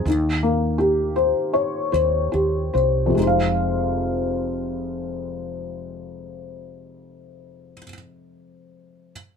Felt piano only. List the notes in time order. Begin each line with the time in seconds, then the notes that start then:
0.07 D#3
0.43 A#3
0.78 G4
1.16 C5
1.53 C#5
1.92 C5
2.32 G4
2.73 C5
3.06 F2 C3
3.15 G#3 D#4
3.23 C5
3.27 F5